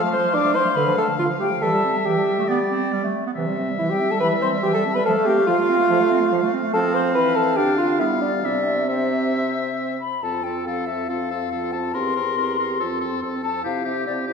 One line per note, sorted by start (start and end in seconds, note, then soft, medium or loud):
0.00 0.28 F3 medium
0.00 0.16 A3 medium
0.00 1.64 F5 medium
0.00 0.13 A5 medium
0.13 0.26 F3 medium
0.13 0.36 C5 loud
0.13 0.36 C6 medium
0.24 0.36 A3 medium
0.34 0.45 F3 medium
0.34 0.57 D4 loud
0.34 0.54 D6 medium
0.44 0.56 A3 medium
0.55 0.66 F3 medium
0.55 0.78 C5 loud
0.55 0.77 C6 medium
0.65 0.75 A3 medium
0.75 0.88 D3 medium
0.75 1.12 D3 medium
0.75 0.97 B4 medium
0.75 0.96 B5 medium
0.86 0.98 F3 medium
0.97 1.09 A3 medium
0.97 1.08 A4 medium
0.97 1.18 A5 medium
1.08 1.20 F3 medium
1.18 1.31 D3 medium
1.18 1.29 F4 medium
1.18 1.24 F5 medium
1.29 1.41 F3 medium
1.40 1.52 A3 medium
1.40 1.50 G4 medium
1.40 1.61 G5 medium
1.51 1.61 F3 medium
1.62 1.74 E3 medium
1.62 1.98 G3 medium
1.62 2.07 A4 loud
1.62 2.50 E5 medium
1.62 2.07 A5 medium
1.73 1.85 G3 medium
1.84 1.96 C4 medium
1.95 2.05 G3 soft
2.05 2.19 E3 medium
2.05 2.92 G4 medium
2.05 2.92 G5 medium
2.17 2.38 G3 medium
2.39 2.44 A3 medium
2.48 2.85 G3 medium
2.48 2.59 B3 medium
2.48 3.14 D5 medium
2.71 2.94 C4 medium
2.93 3.06 G3 medium
3.04 3.26 A3 medium
3.27 3.31 B3 medium
3.35 3.72 C3 medium
3.35 3.49 E3 medium
3.35 5.01 E5 medium
3.47 3.60 G3 medium
3.58 3.71 C4 medium
3.70 3.81 G3 medium
3.79 3.92 E3 medium
3.79 3.92 E4 medium
3.79 3.84 E5 medium
3.89 4.02 G3 soft
3.89 4.12 G4 medium
3.89 4.13 G5 medium
4.01 4.12 C4 medium
4.11 4.21 G3 medium
4.11 4.20 A4 medium
4.11 4.21 A5 medium
4.21 4.34 E3 medium
4.21 4.57 E3 medium
4.21 4.30 B4 medium
4.21 4.28 B5 medium
4.32 4.44 G3 medium
4.42 4.55 C4 medium
4.42 4.52 C5 medium
4.42 4.49 C6 medium
4.53 4.66 G3 medium
4.63 4.76 E3 medium
4.63 4.74 G4 medium
4.63 4.75 G5 medium
4.73 4.87 G3 medium
4.73 4.84 A4 loud
4.73 4.96 A5 medium
4.85 4.97 C4 medium
4.94 5.06 G3 medium
4.94 5.07 B4 medium
4.94 5.05 B5 medium
5.06 5.18 F3 medium
5.06 5.41 A3 medium
5.06 5.28 A4 medium
5.06 6.71 F5 medium
5.06 5.12 A5 medium
5.16 5.28 A3 medium
5.26 5.39 C4 medium
5.26 5.47 G4 loud
5.26 5.32 G5 medium
5.38 5.50 A3 medium
5.47 5.60 F3 medium
5.47 6.51 F4 loud
5.47 6.51 F5 medium
5.58 5.70 A3 medium
5.69 5.81 C4 medium
5.79 5.89 A3 medium
5.89 6.02 F3 medium
5.89 6.25 A3 medium
6.00 6.12 A3 medium
6.10 6.22 C4 medium
6.21 6.33 A3 medium
6.32 6.44 F3 medium
6.43 6.55 A3 medium
6.53 6.65 C4 medium
6.63 6.74 A3 medium
6.73 7.18 F3 medium
6.73 7.59 C4 medium
6.73 6.96 A4 loud
6.73 7.53 F5 medium
6.73 6.79 A5 medium
6.95 7.15 C5 loud
6.95 7.01 C6 medium
7.15 7.59 E3 medium
7.15 7.38 B4 loud
7.15 7.37 B5 medium
7.35 7.58 A4 medium
7.35 7.58 A5 medium
7.56 8.03 D3 medium
7.56 8.02 D4 medium
7.56 7.78 G4 medium
7.56 7.99 F5 medium
7.56 7.77 G5 medium
7.77 8.01 F4 medium
7.77 7.98 F5 medium
7.98 8.47 G3 medium
7.98 8.44 B3 medium
7.98 8.21 E4 medium
7.98 8.04 E5 medium
7.98 8.46 F5 medium
8.22 8.32 D4 medium
8.22 8.43 D5 medium
8.44 10.01 C3 medium
8.44 8.88 C4 medium
8.44 8.90 D4 medium
8.44 8.88 D5 medium
8.44 8.88 E5 medium
8.89 10.00 C4 medium
8.89 9.98 C4 medium
8.89 9.98 C5 medium
8.89 9.98 E5 medium
10.00 10.24 B5 medium
10.22 10.61 F2 soft
10.22 10.44 C4 soft
10.22 10.44 F4 soft
10.22 10.44 A4 soft
10.22 10.45 A5 medium
10.44 10.66 C4 soft
10.44 10.66 F4 soft
10.44 10.66 A4 soft
10.44 10.66 G5 soft
10.65 11.04 F2 soft
10.65 10.88 C4 soft
10.65 10.88 F4 soft
10.65 10.87 A4 soft
10.65 10.88 F5 soft
10.87 11.09 C4 soft
10.87 11.08 F4 soft
10.87 11.08 A4 soft
10.87 11.10 E5 soft
11.08 11.46 F2 soft
11.08 11.30 C4 soft
11.08 11.30 F4 soft
11.08 11.30 A4 soft
11.08 11.74 F5 medium
11.31 11.51 C4 soft
11.31 11.52 F4 soft
11.31 11.51 A4 soft
11.52 11.89 F2 soft
11.52 11.73 C4 soft
11.52 11.73 F4 soft
11.52 11.72 A4 soft
11.73 11.95 C4 soft
11.73 11.94 F4 soft
11.73 11.93 A4 soft
11.73 11.96 A5 medium
11.94 12.32 E2 soft
11.94 12.16 C4 soft
11.94 12.16 G4 soft
11.94 12.15 A#4 soft
11.94 13.23 C6 medium
12.16 12.37 C4 soft
12.16 12.37 G4 soft
12.16 12.37 A#4 soft
12.37 12.75 E2 soft
12.37 12.59 C4 soft
12.37 12.59 G4 soft
12.37 12.58 A#4 soft
12.59 12.80 C4 soft
12.59 12.79 G4 soft
12.59 12.79 A#4 soft
12.80 13.18 F2 soft
12.80 13.01 C4 soft
12.80 13.01 F4 soft
12.80 13.00 A4 soft
13.01 13.22 C4 soft
13.01 13.22 F4 soft
13.01 13.21 A4 soft
13.22 13.60 F2 soft
13.22 13.43 C4 soft
13.22 13.43 F4 soft
13.22 13.43 A4 soft
13.43 13.64 C4 soft
13.43 13.63 F4 soft
13.43 13.63 A4 soft
13.43 13.63 A5 medium
13.64 14.02 C3 soft
13.64 13.85 C4 soft
13.64 13.85 E4 soft
13.64 13.84 G4 soft
13.64 13.87 F5 medium
13.85 14.06 C4 soft
13.85 14.06 E4 soft
13.85 14.06 G4 soft
13.85 14.06 E5 medium
14.06 14.33 C3 soft
14.06 14.27 C4 soft
14.06 14.28 E4 soft
14.06 14.26 G4 soft
14.06 14.13 D5 medium
14.27 14.33 C4 soft
14.27 14.33 E4 soft
14.27 14.33 G4 soft
14.27 14.33 C5 medium